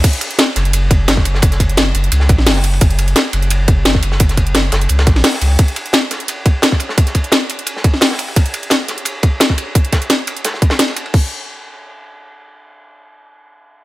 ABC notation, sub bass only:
X:1
M:4/4
L:1/8
Q:"Swing 16ths" 1/4=173
K:F#
V:1 name="Sub bass" clef=bass
z3 F,,,4 F,,,- | F,,,3 F,,, C,, A,,, F,,,2 | F,,,2 z F,,,4 F,,,- | F,,,3 F,,, C,, A,,, z C,, |
z8 | z8 | z8 | z8 |
z8 | z8 |]